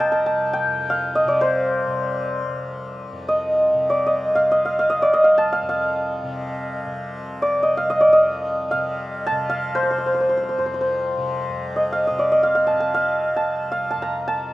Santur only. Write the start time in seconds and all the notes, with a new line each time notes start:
Already playing: D#5 F5 G5
0.00 A5
0.12 A#5
0.26 A5
0.53 G5
0.90 F5
1.15 D#5
1.28 D5
1.41 C5
3.28 D#5
3.90 D5
4.06 D#5
4.35 F5
4.51 D#5
4.65 F5
4.79 F5
4.90 D#5
5.02 D5
5.13 D#5
5.24 F5
5.38 A5
5.53 F5
5.69 F5
7.42 D5
7.63 D#5
7.77 F5
7.90 D#5
8.01 D5
8.13 D#5
8.71 F5
9.26 A5
9.50 F5
9.75 C5
9.83 C5
9.91 C5
9.98 C5
10.06 C5
10.14 C5
10.20 C5
10.29 C5
10.37 C5
10.43 C5
10.49 C5
10.58 C5
10.66 C5
10.74 C5
10.81 C5
11.76 D#5
11.92 F5
12.07 D#5
12.19 D5
12.32 D#5
12.43 F5
12.55 F5
12.67 A5
12.80 A5
12.94 F5
13.36 A5
13.72 F5
13.91 A5
14.02 A#5
14.28 A5